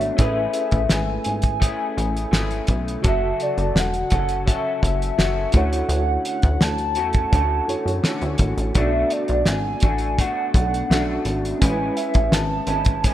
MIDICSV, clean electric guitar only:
0, 0, Header, 1, 2, 480
1, 0, Start_track
1, 0, Tempo, 714371
1, 124, Time_signature, 4, 2, 24, 8
1, 8828, End_track
2, 0, Start_track
2, 0, Title_t, "Clean electric guitar"
2, 0, Program_c, 0, 27
2, 0, Note_on_c, 0, 47, 53
2, 0, Note_on_c, 0, 57, 59
2, 0, Note_on_c, 0, 62, 63
2, 0, Note_on_c, 0, 66, 65
2, 110, Note_off_c, 0, 57, 0
2, 112, Note_on_c, 0, 57, 77
2, 117, Note_off_c, 0, 62, 0
2, 120, Note_on_c, 0, 61, 74
2, 122, Note_off_c, 0, 47, 0
2, 124, Note_off_c, 0, 66, 0
2, 127, Note_on_c, 0, 64, 67
2, 134, Note_on_c, 0, 68, 77
2, 1071, Note_off_c, 0, 57, 0
2, 1074, Note_on_c, 0, 57, 57
2, 1075, Note_off_c, 0, 64, 0
2, 1078, Note_off_c, 0, 61, 0
2, 1080, Note_off_c, 0, 68, 0
2, 1081, Note_on_c, 0, 61, 63
2, 1083, Note_on_c, 0, 64, 62
2, 1088, Note_on_c, 0, 68, 60
2, 1552, Note_off_c, 0, 57, 0
2, 1555, Note_off_c, 0, 64, 0
2, 1555, Note_on_c, 0, 57, 66
2, 1558, Note_off_c, 0, 61, 0
2, 1560, Note_off_c, 0, 68, 0
2, 1561, Note_on_c, 0, 61, 63
2, 1563, Note_on_c, 0, 64, 73
2, 1568, Note_on_c, 0, 68, 66
2, 2030, Note_off_c, 0, 57, 0
2, 2033, Note_on_c, 0, 54, 78
2, 2037, Note_off_c, 0, 64, 0
2, 2038, Note_off_c, 0, 68, 0
2, 2040, Note_on_c, 0, 66, 81
2, 2041, Note_on_c, 0, 69, 82
2, 2756, Note_off_c, 0, 69, 0
2, 2759, Note_on_c, 0, 69, 51
2, 2764, Note_off_c, 0, 66, 0
2, 2766, Note_on_c, 0, 66, 39
2, 2770, Note_off_c, 0, 61, 0
2, 2773, Note_on_c, 0, 61, 39
2, 2993, Note_off_c, 0, 54, 0
2, 2995, Note_off_c, 0, 61, 0
2, 2996, Note_on_c, 0, 54, 56
2, 2999, Note_off_c, 0, 66, 0
2, 3002, Note_off_c, 0, 69, 0
2, 3003, Note_on_c, 0, 61, 53
2, 3007, Note_on_c, 0, 66, 54
2, 3011, Note_on_c, 0, 69, 63
2, 3477, Note_off_c, 0, 54, 0
2, 3480, Note_on_c, 0, 54, 61
2, 3483, Note_off_c, 0, 61, 0
2, 3486, Note_on_c, 0, 61, 60
2, 3488, Note_off_c, 0, 66, 0
2, 3490, Note_off_c, 0, 69, 0
2, 3491, Note_on_c, 0, 66, 70
2, 3493, Note_on_c, 0, 69, 66
2, 3706, Note_off_c, 0, 66, 0
2, 3714, Note_on_c, 0, 66, 58
2, 3715, Note_off_c, 0, 61, 0
2, 3722, Note_off_c, 0, 54, 0
2, 3723, Note_on_c, 0, 61, 55
2, 3728, Note_off_c, 0, 69, 0
2, 3728, Note_on_c, 0, 57, 49
2, 3735, Note_on_c, 0, 50, 54
2, 4679, Note_off_c, 0, 66, 0
2, 4682, Note_on_c, 0, 66, 45
2, 4684, Note_off_c, 0, 61, 0
2, 4692, Note_on_c, 0, 61, 42
2, 4694, Note_off_c, 0, 57, 0
2, 4696, Note_on_c, 0, 57, 38
2, 4713, Note_off_c, 0, 50, 0
2, 4916, Note_off_c, 0, 57, 0
2, 4922, Note_on_c, 0, 50, 57
2, 4923, Note_off_c, 0, 61, 0
2, 4923, Note_off_c, 0, 66, 0
2, 4924, Note_on_c, 0, 57, 59
2, 4931, Note_on_c, 0, 61, 60
2, 4934, Note_on_c, 0, 66, 68
2, 5395, Note_off_c, 0, 50, 0
2, 5396, Note_off_c, 0, 61, 0
2, 5398, Note_off_c, 0, 57, 0
2, 5398, Note_on_c, 0, 50, 65
2, 5401, Note_on_c, 0, 57, 66
2, 5404, Note_on_c, 0, 61, 69
2, 5406, Note_off_c, 0, 66, 0
2, 5408, Note_on_c, 0, 66, 65
2, 5880, Note_off_c, 0, 57, 0
2, 5880, Note_on_c, 0, 47, 68
2, 5883, Note_on_c, 0, 57, 72
2, 5884, Note_off_c, 0, 61, 0
2, 5888, Note_on_c, 0, 62, 72
2, 5890, Note_off_c, 0, 66, 0
2, 5892, Note_on_c, 0, 66, 73
2, 6588, Note_off_c, 0, 66, 0
2, 6596, Note_on_c, 0, 66, 45
2, 6597, Note_off_c, 0, 62, 0
2, 6602, Note_off_c, 0, 47, 0
2, 6605, Note_on_c, 0, 62, 44
2, 6606, Note_off_c, 0, 57, 0
2, 6609, Note_on_c, 0, 57, 39
2, 6838, Note_off_c, 0, 57, 0
2, 6840, Note_off_c, 0, 66, 0
2, 6841, Note_on_c, 0, 47, 54
2, 6842, Note_off_c, 0, 62, 0
2, 6847, Note_on_c, 0, 57, 59
2, 6851, Note_on_c, 0, 62, 57
2, 6856, Note_on_c, 0, 66, 66
2, 7316, Note_off_c, 0, 47, 0
2, 7324, Note_on_c, 0, 47, 52
2, 7325, Note_off_c, 0, 62, 0
2, 7326, Note_off_c, 0, 57, 0
2, 7328, Note_on_c, 0, 57, 63
2, 7330, Note_off_c, 0, 66, 0
2, 7333, Note_on_c, 0, 62, 55
2, 7338, Note_on_c, 0, 66, 64
2, 7749, Note_off_c, 0, 50, 0
2, 7804, Note_off_c, 0, 47, 0
2, 7804, Note_off_c, 0, 57, 0
2, 7807, Note_on_c, 0, 56, 76
2, 7808, Note_off_c, 0, 66, 0
2, 7809, Note_off_c, 0, 62, 0
2, 7811, Note_on_c, 0, 64, 76
2, 7812, Note_on_c, 0, 61, 74
2, 8510, Note_off_c, 0, 64, 0
2, 8518, Note_on_c, 0, 64, 45
2, 8521, Note_off_c, 0, 61, 0
2, 8524, Note_off_c, 0, 56, 0
2, 8524, Note_on_c, 0, 61, 39
2, 8532, Note_on_c, 0, 56, 37
2, 8761, Note_off_c, 0, 64, 0
2, 8763, Note_off_c, 0, 56, 0
2, 8764, Note_off_c, 0, 61, 0
2, 8764, Note_on_c, 0, 45, 66
2, 8771, Note_on_c, 0, 56, 59
2, 8772, Note_on_c, 0, 61, 66
2, 8777, Note_on_c, 0, 64, 62
2, 8828, Note_off_c, 0, 45, 0
2, 8828, Note_off_c, 0, 56, 0
2, 8828, Note_off_c, 0, 61, 0
2, 8828, Note_off_c, 0, 64, 0
2, 8828, End_track
0, 0, End_of_file